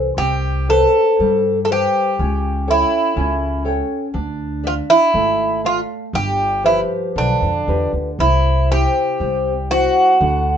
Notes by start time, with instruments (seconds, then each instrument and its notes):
Already playing: upright bass C2, nylon-string guitar E3
0.17 upright bass C2, nylon-string guitar C4, bouzouki G4
0.69 bouzouki A4, nylon-string guitar B4 C5 E5
1.20 upright bass G2, nylon-string guitar G3
1.65 bouzouki A4
1.70 bouzouki G4, nylon-string guitar B4 C5 E5
2.19 upright bass C#2, nylon-string guitar C#4
2.67 bouzouki E4, nylon-string guitar A4 C#5 G5
3.16 upright bass C#2, nylon-string guitar C#4
3.65 nylon-string guitar A4 C#5 G5
4.14 upright bass D2, nylon-string guitar D4
4.64 bouzouki F4, nylon-string guitar D5 E5
4.90 bouzouki E4
5.14 upright bass G#1, nylon-string guitar A3
5.64 bouzouki F4, nylon-string guitar D5 E5 F5
6.13 upright bass G1, nylon-string guitar G3, bouzouki G4
6.64 nylon-string guitar F3 G4 B4, bouzouki E4
7.16 upright bass B1, nylon-string guitar D3, bouzouki D4
7.42 upright bass F2
7.68 upright bass E2, nylon-string guitar F4 G4 B4
7.93 upright bass D2
8.19 upright bass C2, nylon-string guitar C3, bouzouki E4
8.71 nylon-string guitar C4 E4 G4, bouzouki G4
9.20 upright bass C2, nylon-string guitar G3
9.70 nylon-string guitar C4 E4, bouzouki F#4
10.21 upright bass D2, nylon-string guitar D3